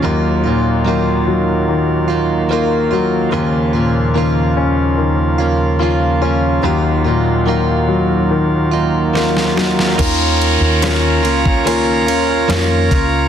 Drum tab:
CC |----------------|----------------|----------------|x---------------|
RD |----------------|----------------|----------------|x-x-x-x-x-x-x-x-|
SD |----------------|----------------|------------oooo|----o-------o---|
BD |----------------|----------------|----------------|o------o------o-|